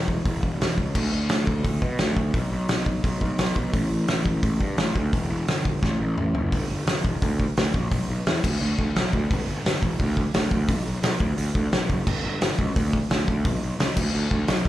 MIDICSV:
0, 0, Header, 1, 3, 480
1, 0, Start_track
1, 0, Tempo, 348635
1, 1300, Time_signature, 4, 2, 24, 8
1, 10897, Tempo, 345821
1, 20296, End_track
2, 0, Start_track
2, 0, Title_t, "Picked electric bass"
2, 0, Program_c, 0, 34
2, 0, Note_on_c, 0, 28, 84
2, 270, Note_off_c, 0, 28, 0
2, 350, Note_on_c, 0, 28, 98
2, 544, Note_off_c, 0, 28, 0
2, 592, Note_on_c, 0, 28, 87
2, 786, Note_off_c, 0, 28, 0
2, 837, Note_on_c, 0, 28, 86
2, 1029, Note_off_c, 0, 28, 0
2, 1074, Note_on_c, 0, 37, 88
2, 1267, Note_off_c, 0, 37, 0
2, 1313, Note_on_c, 0, 38, 91
2, 1507, Note_off_c, 0, 38, 0
2, 1552, Note_on_c, 0, 38, 84
2, 1746, Note_off_c, 0, 38, 0
2, 1801, Note_on_c, 0, 38, 90
2, 1992, Note_off_c, 0, 38, 0
2, 2027, Note_on_c, 0, 38, 87
2, 2224, Note_off_c, 0, 38, 0
2, 2263, Note_on_c, 0, 38, 95
2, 2461, Note_off_c, 0, 38, 0
2, 2505, Note_on_c, 0, 47, 94
2, 2703, Note_off_c, 0, 47, 0
2, 2749, Note_on_c, 0, 38, 85
2, 2945, Note_off_c, 0, 38, 0
2, 2980, Note_on_c, 0, 38, 97
2, 3180, Note_off_c, 0, 38, 0
2, 3223, Note_on_c, 0, 35, 98
2, 3422, Note_off_c, 0, 35, 0
2, 3468, Note_on_c, 0, 35, 90
2, 3665, Note_off_c, 0, 35, 0
2, 3706, Note_on_c, 0, 35, 87
2, 4103, Note_off_c, 0, 35, 0
2, 4186, Note_on_c, 0, 35, 98
2, 4383, Note_off_c, 0, 35, 0
2, 4427, Note_on_c, 0, 35, 98
2, 4624, Note_off_c, 0, 35, 0
2, 4666, Note_on_c, 0, 35, 91
2, 4864, Note_off_c, 0, 35, 0
2, 4906, Note_on_c, 0, 35, 96
2, 5103, Note_off_c, 0, 35, 0
2, 5149, Note_on_c, 0, 33, 98
2, 5345, Note_off_c, 0, 33, 0
2, 5379, Note_on_c, 0, 33, 95
2, 5579, Note_off_c, 0, 33, 0
2, 5618, Note_on_c, 0, 33, 86
2, 5819, Note_off_c, 0, 33, 0
2, 5859, Note_on_c, 0, 33, 93
2, 6060, Note_off_c, 0, 33, 0
2, 6104, Note_on_c, 0, 33, 98
2, 6303, Note_off_c, 0, 33, 0
2, 6339, Note_on_c, 0, 43, 95
2, 6539, Note_off_c, 0, 43, 0
2, 6566, Note_on_c, 0, 33, 87
2, 6772, Note_off_c, 0, 33, 0
2, 6820, Note_on_c, 0, 38, 98
2, 7020, Note_off_c, 0, 38, 0
2, 7064, Note_on_c, 0, 28, 99
2, 7263, Note_off_c, 0, 28, 0
2, 7297, Note_on_c, 0, 28, 101
2, 7498, Note_off_c, 0, 28, 0
2, 7541, Note_on_c, 0, 31, 85
2, 7940, Note_off_c, 0, 31, 0
2, 8021, Note_on_c, 0, 33, 91
2, 8220, Note_off_c, 0, 33, 0
2, 8264, Note_on_c, 0, 33, 93
2, 8462, Note_off_c, 0, 33, 0
2, 8508, Note_on_c, 0, 33, 90
2, 8704, Note_off_c, 0, 33, 0
2, 8743, Note_on_c, 0, 30, 97
2, 8941, Note_off_c, 0, 30, 0
2, 8984, Note_on_c, 0, 31, 98
2, 9134, Note_off_c, 0, 31, 0
2, 9221, Note_on_c, 0, 31, 98
2, 9372, Note_off_c, 0, 31, 0
2, 9455, Note_on_c, 0, 31, 92
2, 9608, Note_off_c, 0, 31, 0
2, 9701, Note_on_c, 0, 28, 91
2, 9851, Note_off_c, 0, 28, 0
2, 9945, Note_on_c, 0, 38, 95
2, 10246, Note_off_c, 0, 38, 0
2, 10431, Note_on_c, 0, 38, 93
2, 10577, Note_off_c, 0, 38, 0
2, 10668, Note_on_c, 0, 34, 104
2, 10815, Note_off_c, 0, 34, 0
2, 10900, Note_on_c, 0, 35, 101
2, 11050, Note_off_c, 0, 35, 0
2, 11139, Note_on_c, 0, 35, 98
2, 11290, Note_off_c, 0, 35, 0
2, 11387, Note_on_c, 0, 40, 88
2, 11536, Note_off_c, 0, 40, 0
2, 11630, Note_on_c, 0, 38, 89
2, 11778, Note_off_c, 0, 38, 0
2, 11867, Note_on_c, 0, 38, 104
2, 12017, Note_off_c, 0, 38, 0
2, 12109, Note_on_c, 0, 38, 95
2, 12258, Note_off_c, 0, 38, 0
2, 12348, Note_on_c, 0, 35, 93
2, 12497, Note_off_c, 0, 35, 0
2, 12588, Note_on_c, 0, 38, 100
2, 12737, Note_off_c, 0, 38, 0
2, 12832, Note_on_c, 0, 31, 98
2, 12980, Note_off_c, 0, 31, 0
2, 13066, Note_on_c, 0, 31, 97
2, 13216, Note_off_c, 0, 31, 0
2, 13298, Note_on_c, 0, 31, 96
2, 13451, Note_off_c, 0, 31, 0
2, 13547, Note_on_c, 0, 28, 91
2, 13698, Note_off_c, 0, 28, 0
2, 13790, Note_on_c, 0, 38, 97
2, 14092, Note_off_c, 0, 38, 0
2, 14265, Note_on_c, 0, 38, 92
2, 14416, Note_off_c, 0, 38, 0
2, 14509, Note_on_c, 0, 38, 99
2, 14745, Note_on_c, 0, 35, 100
2, 14766, Note_off_c, 0, 38, 0
2, 14896, Note_off_c, 0, 35, 0
2, 14975, Note_on_c, 0, 35, 93
2, 15129, Note_off_c, 0, 35, 0
2, 15208, Note_on_c, 0, 35, 91
2, 15365, Note_off_c, 0, 35, 0
2, 15461, Note_on_c, 0, 38, 94
2, 15613, Note_off_c, 0, 38, 0
2, 15696, Note_on_c, 0, 38, 91
2, 15850, Note_off_c, 0, 38, 0
2, 15945, Note_on_c, 0, 38, 93
2, 16096, Note_off_c, 0, 38, 0
2, 16185, Note_on_c, 0, 35, 87
2, 16336, Note_off_c, 0, 35, 0
2, 16422, Note_on_c, 0, 30, 97
2, 16574, Note_off_c, 0, 30, 0
2, 16666, Note_on_c, 0, 31, 96
2, 16816, Note_off_c, 0, 31, 0
2, 16906, Note_on_c, 0, 31, 101
2, 17056, Note_off_c, 0, 31, 0
2, 17135, Note_on_c, 0, 31, 90
2, 17289, Note_off_c, 0, 31, 0
2, 17386, Note_on_c, 0, 37, 96
2, 17535, Note_off_c, 0, 37, 0
2, 17623, Note_on_c, 0, 38, 97
2, 17926, Note_off_c, 0, 38, 0
2, 18107, Note_on_c, 0, 38, 95
2, 18256, Note_off_c, 0, 38, 0
2, 18350, Note_on_c, 0, 38, 99
2, 18585, Note_on_c, 0, 35, 97
2, 18606, Note_off_c, 0, 38, 0
2, 18734, Note_off_c, 0, 35, 0
2, 18811, Note_on_c, 0, 35, 97
2, 18964, Note_off_c, 0, 35, 0
2, 19049, Note_on_c, 0, 37, 90
2, 19203, Note_off_c, 0, 37, 0
2, 19302, Note_on_c, 0, 38, 94
2, 19452, Note_off_c, 0, 38, 0
2, 19536, Note_on_c, 0, 38, 97
2, 19687, Note_off_c, 0, 38, 0
2, 19778, Note_on_c, 0, 38, 93
2, 19928, Note_off_c, 0, 38, 0
2, 20022, Note_on_c, 0, 35, 96
2, 20171, Note_off_c, 0, 35, 0
2, 20249, Note_on_c, 0, 30, 97
2, 20296, Note_off_c, 0, 30, 0
2, 20296, End_track
3, 0, Start_track
3, 0, Title_t, "Drums"
3, 111, Note_on_c, 9, 36, 87
3, 248, Note_off_c, 9, 36, 0
3, 351, Note_on_c, 9, 36, 111
3, 354, Note_on_c, 9, 46, 62
3, 488, Note_off_c, 9, 36, 0
3, 492, Note_off_c, 9, 46, 0
3, 592, Note_on_c, 9, 36, 81
3, 730, Note_off_c, 9, 36, 0
3, 842, Note_on_c, 9, 46, 65
3, 852, Note_on_c, 9, 38, 106
3, 980, Note_off_c, 9, 46, 0
3, 990, Note_off_c, 9, 38, 0
3, 1070, Note_on_c, 9, 36, 84
3, 1208, Note_off_c, 9, 36, 0
3, 1308, Note_on_c, 9, 49, 106
3, 1309, Note_on_c, 9, 36, 114
3, 1446, Note_off_c, 9, 49, 0
3, 1447, Note_off_c, 9, 36, 0
3, 1778, Note_on_c, 9, 46, 58
3, 1788, Note_on_c, 9, 38, 112
3, 1916, Note_off_c, 9, 46, 0
3, 1926, Note_off_c, 9, 38, 0
3, 2028, Note_on_c, 9, 36, 89
3, 2166, Note_off_c, 9, 36, 0
3, 2263, Note_on_c, 9, 46, 56
3, 2266, Note_on_c, 9, 36, 109
3, 2401, Note_off_c, 9, 46, 0
3, 2403, Note_off_c, 9, 36, 0
3, 2506, Note_on_c, 9, 36, 79
3, 2643, Note_off_c, 9, 36, 0
3, 2731, Note_on_c, 9, 46, 57
3, 2741, Note_on_c, 9, 38, 115
3, 2869, Note_off_c, 9, 46, 0
3, 2878, Note_off_c, 9, 38, 0
3, 2982, Note_on_c, 9, 36, 91
3, 3120, Note_off_c, 9, 36, 0
3, 3221, Note_on_c, 9, 46, 62
3, 3222, Note_on_c, 9, 36, 114
3, 3359, Note_off_c, 9, 46, 0
3, 3360, Note_off_c, 9, 36, 0
3, 3698, Note_on_c, 9, 46, 62
3, 3708, Note_on_c, 9, 38, 113
3, 3836, Note_off_c, 9, 46, 0
3, 3845, Note_off_c, 9, 38, 0
3, 3942, Note_on_c, 9, 36, 89
3, 4080, Note_off_c, 9, 36, 0
3, 4185, Note_on_c, 9, 36, 117
3, 4190, Note_on_c, 9, 46, 59
3, 4323, Note_off_c, 9, 36, 0
3, 4328, Note_off_c, 9, 46, 0
3, 4423, Note_on_c, 9, 36, 84
3, 4561, Note_off_c, 9, 36, 0
3, 4658, Note_on_c, 9, 46, 64
3, 4668, Note_on_c, 9, 38, 110
3, 4796, Note_off_c, 9, 46, 0
3, 4805, Note_off_c, 9, 38, 0
3, 4902, Note_on_c, 9, 36, 88
3, 5040, Note_off_c, 9, 36, 0
3, 5143, Note_on_c, 9, 36, 115
3, 5143, Note_on_c, 9, 46, 68
3, 5281, Note_off_c, 9, 36, 0
3, 5281, Note_off_c, 9, 46, 0
3, 5616, Note_on_c, 9, 46, 69
3, 5626, Note_on_c, 9, 38, 107
3, 5754, Note_off_c, 9, 46, 0
3, 5764, Note_off_c, 9, 38, 0
3, 5859, Note_on_c, 9, 36, 89
3, 5997, Note_off_c, 9, 36, 0
3, 6097, Note_on_c, 9, 46, 60
3, 6099, Note_on_c, 9, 36, 116
3, 6235, Note_off_c, 9, 46, 0
3, 6237, Note_off_c, 9, 36, 0
3, 6340, Note_on_c, 9, 36, 86
3, 6478, Note_off_c, 9, 36, 0
3, 6574, Note_on_c, 9, 46, 57
3, 6584, Note_on_c, 9, 38, 110
3, 6712, Note_off_c, 9, 46, 0
3, 6722, Note_off_c, 9, 38, 0
3, 6823, Note_on_c, 9, 36, 86
3, 6960, Note_off_c, 9, 36, 0
3, 7064, Note_on_c, 9, 36, 114
3, 7068, Note_on_c, 9, 46, 59
3, 7202, Note_off_c, 9, 36, 0
3, 7205, Note_off_c, 9, 46, 0
3, 7543, Note_on_c, 9, 46, 60
3, 7553, Note_on_c, 9, 38, 112
3, 7681, Note_off_c, 9, 46, 0
3, 7691, Note_off_c, 9, 38, 0
3, 7784, Note_on_c, 9, 36, 91
3, 7922, Note_off_c, 9, 36, 0
3, 8023, Note_on_c, 9, 36, 112
3, 8037, Note_on_c, 9, 38, 64
3, 8161, Note_off_c, 9, 36, 0
3, 8175, Note_off_c, 9, 38, 0
3, 8503, Note_on_c, 9, 45, 89
3, 8641, Note_off_c, 9, 45, 0
3, 8739, Note_on_c, 9, 43, 94
3, 8876, Note_off_c, 9, 43, 0
3, 8981, Note_on_c, 9, 46, 73
3, 8982, Note_on_c, 9, 36, 118
3, 9119, Note_off_c, 9, 36, 0
3, 9119, Note_off_c, 9, 46, 0
3, 9458, Note_on_c, 9, 46, 69
3, 9467, Note_on_c, 9, 38, 112
3, 9595, Note_off_c, 9, 46, 0
3, 9605, Note_off_c, 9, 38, 0
3, 9701, Note_on_c, 9, 36, 93
3, 9838, Note_off_c, 9, 36, 0
3, 9944, Note_on_c, 9, 36, 117
3, 9950, Note_on_c, 9, 46, 64
3, 10081, Note_off_c, 9, 36, 0
3, 10087, Note_off_c, 9, 46, 0
3, 10182, Note_on_c, 9, 36, 85
3, 10320, Note_off_c, 9, 36, 0
3, 10422, Note_on_c, 9, 46, 63
3, 10431, Note_on_c, 9, 38, 114
3, 10559, Note_off_c, 9, 46, 0
3, 10569, Note_off_c, 9, 38, 0
3, 10660, Note_on_c, 9, 36, 95
3, 10798, Note_off_c, 9, 36, 0
3, 10897, Note_on_c, 9, 46, 67
3, 10898, Note_on_c, 9, 36, 114
3, 11036, Note_off_c, 9, 46, 0
3, 11037, Note_off_c, 9, 36, 0
3, 11380, Note_on_c, 9, 46, 71
3, 11390, Note_on_c, 9, 38, 119
3, 11519, Note_off_c, 9, 46, 0
3, 11529, Note_off_c, 9, 38, 0
3, 11625, Note_on_c, 9, 36, 111
3, 11628, Note_on_c, 9, 49, 109
3, 11764, Note_off_c, 9, 36, 0
3, 11767, Note_off_c, 9, 49, 0
3, 12106, Note_on_c, 9, 36, 86
3, 12245, Note_off_c, 9, 36, 0
3, 12346, Note_on_c, 9, 46, 70
3, 12356, Note_on_c, 9, 38, 115
3, 12485, Note_off_c, 9, 46, 0
3, 12495, Note_off_c, 9, 38, 0
3, 12588, Note_on_c, 9, 36, 96
3, 12727, Note_off_c, 9, 36, 0
3, 12830, Note_on_c, 9, 36, 125
3, 12839, Note_on_c, 9, 46, 77
3, 12969, Note_off_c, 9, 36, 0
3, 12978, Note_off_c, 9, 46, 0
3, 13315, Note_on_c, 9, 46, 73
3, 13325, Note_on_c, 9, 38, 118
3, 13454, Note_off_c, 9, 46, 0
3, 13464, Note_off_c, 9, 38, 0
3, 13550, Note_on_c, 9, 36, 86
3, 13689, Note_off_c, 9, 36, 0
3, 13788, Note_on_c, 9, 36, 116
3, 13790, Note_on_c, 9, 46, 71
3, 13927, Note_off_c, 9, 36, 0
3, 13929, Note_off_c, 9, 46, 0
3, 14027, Note_on_c, 9, 36, 88
3, 14166, Note_off_c, 9, 36, 0
3, 14263, Note_on_c, 9, 46, 64
3, 14273, Note_on_c, 9, 38, 123
3, 14402, Note_off_c, 9, 46, 0
3, 14412, Note_off_c, 9, 38, 0
3, 14504, Note_on_c, 9, 36, 96
3, 14642, Note_off_c, 9, 36, 0
3, 14739, Note_on_c, 9, 46, 64
3, 14744, Note_on_c, 9, 36, 113
3, 14878, Note_off_c, 9, 46, 0
3, 14882, Note_off_c, 9, 36, 0
3, 15224, Note_on_c, 9, 46, 68
3, 15233, Note_on_c, 9, 38, 120
3, 15362, Note_off_c, 9, 46, 0
3, 15372, Note_off_c, 9, 38, 0
3, 15462, Note_on_c, 9, 36, 111
3, 15601, Note_off_c, 9, 36, 0
3, 15702, Note_on_c, 9, 46, 65
3, 15841, Note_off_c, 9, 46, 0
3, 15944, Note_on_c, 9, 36, 91
3, 16083, Note_off_c, 9, 36, 0
3, 16182, Note_on_c, 9, 46, 73
3, 16192, Note_on_c, 9, 38, 118
3, 16321, Note_off_c, 9, 46, 0
3, 16331, Note_off_c, 9, 38, 0
3, 16424, Note_on_c, 9, 36, 92
3, 16563, Note_off_c, 9, 36, 0
3, 16664, Note_on_c, 9, 36, 118
3, 16664, Note_on_c, 9, 57, 107
3, 16802, Note_off_c, 9, 57, 0
3, 16803, Note_off_c, 9, 36, 0
3, 17141, Note_on_c, 9, 46, 68
3, 17151, Note_on_c, 9, 38, 124
3, 17280, Note_off_c, 9, 46, 0
3, 17289, Note_off_c, 9, 38, 0
3, 17382, Note_on_c, 9, 36, 94
3, 17521, Note_off_c, 9, 36, 0
3, 17626, Note_on_c, 9, 36, 125
3, 17627, Note_on_c, 9, 46, 69
3, 17764, Note_off_c, 9, 36, 0
3, 17765, Note_off_c, 9, 46, 0
3, 17864, Note_on_c, 9, 36, 91
3, 18002, Note_off_c, 9, 36, 0
3, 18099, Note_on_c, 9, 46, 67
3, 18109, Note_on_c, 9, 38, 118
3, 18238, Note_off_c, 9, 46, 0
3, 18248, Note_off_c, 9, 38, 0
3, 18344, Note_on_c, 9, 36, 91
3, 18483, Note_off_c, 9, 36, 0
3, 18581, Note_on_c, 9, 36, 127
3, 18584, Note_on_c, 9, 46, 65
3, 18720, Note_off_c, 9, 36, 0
3, 18722, Note_off_c, 9, 46, 0
3, 19061, Note_on_c, 9, 46, 65
3, 19071, Note_on_c, 9, 38, 123
3, 19200, Note_off_c, 9, 46, 0
3, 19210, Note_off_c, 9, 38, 0
3, 19296, Note_on_c, 9, 49, 114
3, 19299, Note_on_c, 9, 36, 114
3, 19435, Note_off_c, 9, 49, 0
3, 19438, Note_off_c, 9, 36, 0
3, 19776, Note_on_c, 9, 36, 87
3, 19915, Note_off_c, 9, 36, 0
3, 20006, Note_on_c, 9, 46, 66
3, 20016, Note_on_c, 9, 38, 116
3, 20145, Note_off_c, 9, 46, 0
3, 20155, Note_off_c, 9, 38, 0
3, 20250, Note_on_c, 9, 36, 90
3, 20296, Note_off_c, 9, 36, 0
3, 20296, End_track
0, 0, End_of_file